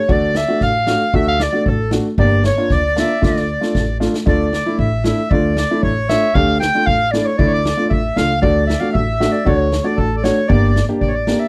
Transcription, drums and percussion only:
0.09 kick
0.35 snare
0.60 kick, snare
0.87 snare
1.14 kick
1.40 snare
1.66 kick
1.91 snare
2.18 kick
2.44 snare
2.70 kick, snare
2.97 snare
3.23 kick, snare
3.36 snare
3.62 snare
3.75 kick, snare
4.01 snare
4.14 snare
4.27 kick
4.53 snare
4.79 kick
5.04 snare
5.31 kick
5.57 snare
5.83 kick
6.09 snare
6.35 kick
6.62 snare
6.87 kick
7.14 snare
7.39 kick
7.65 snare
7.91 kick
8.17 snare
8.43 kick
8.70 snare
8.95 kick
9.21 snare
9.46 kick
9.72 snare
9.98 kick
10.24 snare
10.50 kick
10.76 snare
11.01 kick
11.27 snare

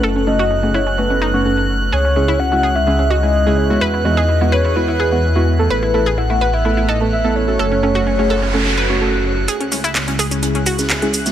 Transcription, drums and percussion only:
9.48 closed hi-hat, shaker
9.61 closed hi-hat
9.72 snare, closed hi-hat, open hi-hat, shaker
9.84 closed hi-hat, shaker
9.95 snare, clap, closed hi-hat, shaker
10.08 closed hi-hat
10.19 closed hi-hat, open hi-hat, shaker
10.31 closed hi-hat, shaker
10.43 closed hi-hat, shaker
10.55 closed hi-hat
10.66 closed hi-hat, open hi-hat, shaker
10.79 snare, closed hi-hat, shaker
10.90 snare, clap, closed hi-hat, shaker
11.02 closed hi-hat
11.13 closed hi-hat, open hi-hat, shaker
11.26 snare, closed hi-hat, shaker

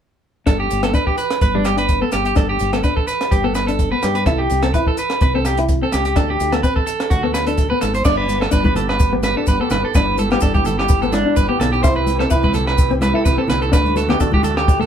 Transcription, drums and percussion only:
0.47 kick, cross-stick, closed hi-hat, maracas
0.70 closed hi-hat, maracas
0.83 cross-stick, closed hi-hat
0.94 kick, closed hi-hat, maracas
1.07 kick
1.18 closed hi-hat, maracas
1.30 cross-stick, closed hi-hat, maracas
1.41 kick, closed hi-hat, maracas
1.65 cross-stick, closed hi-hat, maracas
1.78 closed hi-hat, maracas
1.89 kick, closed hi-hat, maracas
2.12 cross-stick, closed hi-hat, maracas
2.25 closed hi-hat
2.35 kick, cross-stick, closed hi-hat, maracas
2.59 closed hi-hat, maracas
2.73 cross-stick, closed hi-hat
2.83 kick, closed hi-hat, maracas
2.97 kick
3.07 closed hi-hat, maracas
3.21 cross-stick, closed hi-hat, maracas
3.32 kick, closed hi-hat, maracas
3.55 cross-stick, closed hi-hat, maracas
3.68 closed hi-hat, maracas
3.79 kick, closed hi-hat, maracas
4.03 cross-stick, closed hi-hat, maracas
4.15 closed hi-hat
4.26 kick, cross-stick, closed hi-hat, maracas
4.50 closed hi-hat, maracas
4.63 cross-stick, closed hi-hat
4.74 kick, closed hi-hat, maracas
4.87 kick
4.97 closed hi-hat, maracas
5.10 cross-stick, closed hi-hat, maracas
5.21 kick, closed hi-hat, maracas
5.45 cross-stick, closed hi-hat, maracas
5.57 closed hi-hat, maracas
5.69 kick, closed hi-hat, maracas
5.92 cross-stick, closed hi-hat, maracas
6.05 closed hi-hat
6.16 kick, cross-stick, closed hi-hat, maracas
6.40 closed hi-hat, maracas
6.53 cross-stick, closed hi-hat, maracas
6.63 kick, closed hi-hat, maracas
6.76 kick
6.87 closed hi-hat, maracas
7.00 cross-stick, closed hi-hat
7.10 kick, closed hi-hat, maracas
7.34 cross-stick, closed hi-hat, maracas
7.47 closed hi-hat
7.58 kick, closed hi-hat, maracas
7.81 cross-stick, closed hi-hat, maracas
7.94 closed hi-hat, maracas
8.05 kick, cross-stick, crash, maracas
8.28 closed hi-hat, high conga, maracas
8.41 cross-stick, maracas
8.51 kick, maracas
8.64 kick, high conga, maracas
8.76 closed hi-hat, low conga, maracas
8.89 cross-stick
8.99 kick, maracas
9.23 cross-stick, closed hi-hat, high conga, maracas
9.46 kick, maracas
9.70 cross-stick, closed hi-hat, low conga, maracas
9.94 kick, cross-stick, maracas
10.18 closed hi-hat, high conga, maracas
10.30 cross-stick, maracas
10.40 kick, maracas
10.54 kick, high conga, maracas
10.65 closed hi-hat, low conga, maracas
10.80 cross-stick
10.88 kick, maracas
11.02 maracas
11.12 cross-stick, closed hi-hat, high conga, maracas
11.36 kick, maracas
11.60 cross-stick, closed hi-hat, low conga, maracas
11.73 maracas
11.84 kick, cross-stick, maracas
12.07 closed hi-hat, high conga, maracas
12.20 cross-stick, maracas
12.30 kick, maracas
12.43 kick, high conga, maracas
12.53 closed hi-hat, low conga, maracas
12.67 cross-stick
12.78 kick, maracas
12.91 maracas
13.01 cross-stick, closed hi-hat, high conga, maracas
13.26 kick, maracas
13.48 cross-stick, closed hi-hat, low conga, maracas
13.62 maracas
13.73 kick, cross-stick, maracas
13.85 high conga, maracas
13.96 closed hi-hat, high conga, maracas
14.09 cross-stick, low conga, maracas
14.20 kick, maracas
14.32 kick, high conga
14.43 closed hi-hat, low conga, maracas
14.57 cross-stick, maracas
14.68 kick, maracas
14.82 maracas

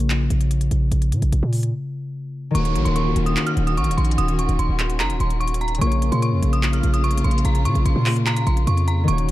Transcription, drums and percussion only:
0.10 clap, closed hi-hat
0.30 closed hi-hat
0.41 closed hi-hat
0.51 closed hi-hat
0.61 closed hi-hat
0.71 closed hi-hat
0.92 closed hi-hat
1.02 closed hi-hat
1.12 closed hi-hat
1.22 closed hi-hat
1.32 closed hi-hat
1.53 open hi-hat
1.63 closed hi-hat
2.55 closed hi-hat
2.65 closed hi-hat
2.76 closed hi-hat
2.86 closed hi-hat
2.96 closed hi-hat
3.16 closed hi-hat
3.26 closed hi-hat
3.37 clap, closed hi-hat
3.47 closed hi-hat
3.57 closed hi-hat
3.67 closed hi-hat
3.77 closed hi-hat
3.84 closed hi-hat
3.91 closed hi-hat
3.98 closed hi-hat
4.05 closed hi-hat
4.11 closed hi-hat
4.18 closed hi-hat
4.28 closed hi-hat
4.39 closed hi-hat
4.49 closed hi-hat
4.59 closed hi-hat
4.79 clap, closed hi-hat
4.90 closed hi-hat
5.00 clap, closed hi-hat
5.10 closed hi-hat
5.20 closed hi-hat
5.30 closed hi-hat
5.41 closed hi-hat
5.47 closed hi-hat
5.54 closed hi-hat
5.61 closed hi-hat
5.68 closed hi-hat
5.75 closed hi-hat
5.81 closed hi-hat
5.92 closed hi-hat
6.02 closed hi-hat
6.12 closed hi-hat
6.22 closed hi-hat
6.43 closed hi-hat
6.53 closed hi-hat
6.63 clap, closed hi-hat
6.73 closed hi-hat
6.83 closed hi-hat
6.94 closed hi-hat
7.04 closed hi-hat
7.11 closed hi-hat
7.18 closed hi-hat
7.24 closed hi-hat
7.31 closed hi-hat
7.38 closed hi-hat
7.45 closed hi-hat
7.55 closed hi-hat
7.65 closed hi-hat
7.75 closed hi-hat
7.86 closed hi-hat
8.06 clap, open hi-hat
8.16 closed hi-hat
8.26 clap, closed hi-hat
8.36 closed hi-hat
8.47 closed hi-hat
8.57 closed hi-hat
8.67 closed hi-hat
8.77 closed hi-hat
8.88 closed hi-hat
9.08 closed hi-hat
9.18 closed hi-hat

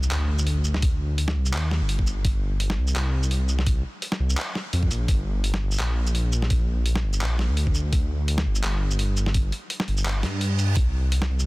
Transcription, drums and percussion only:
0.03 shaker
0.11 clap, closed hi-hat
0.39 shaker
0.47 closed hi-hat
0.64 shaker
0.74 snare
0.82 kick, closed hi-hat
1.18 closed hi-hat
1.28 snare
1.46 shaker
1.54 clap, closed hi-hat
1.71 snare
1.89 closed hi-hat
1.99 kick
2.07 shaker
2.25 kick, closed hi-hat
2.60 closed hi-hat
2.70 snare
2.88 shaker
2.96 clap, closed hi-hat
3.23 shaker
3.31 closed hi-hat
3.49 shaker
3.59 snare
3.67 kick, closed hi-hat
4.02 closed hi-hat
4.12 snare
4.30 shaker
4.37 clap, closed hi-hat
4.55 snare
4.73 closed hi-hat
4.83 kick
4.91 closed hi-hat, shaker
5.08 kick, closed hi-hat
5.44 closed hi-hat
5.54 snare
5.72 shaker
5.74 shaker
5.76 clap, closed hi-hat, shaker
6.07 shaker
6.15 closed hi-hat
6.32 shaker
6.42 snare
6.50 kick, closed hi-hat
6.86 closed hi-hat
6.95 snare
7.13 shaker
7.21 clap, closed hi-hat
7.39 snare
7.57 closed hi-hat
7.67 kick
7.75 shaker
7.93 kick, closed hi-hat
8.28 closed hi-hat
8.38 snare
8.55 shaker
8.64 clap, closed hi-hat
8.91 shaker
8.99 closed hi-hat
9.17 shaker
9.26 snare
9.34 kick, closed hi-hat
9.52 closed hi-hat
9.70 closed hi-hat
9.80 snare
9.88 closed hi-hat
9.98 shaker
10.05 clap, closed hi-hat
10.23 snare, closed hi-hat
10.41 closed hi-hat
10.59 closed hi-hat, shaker
10.76 kick, closed hi-hat
11.12 closed hi-hat
11.22 snare
11.39 shaker

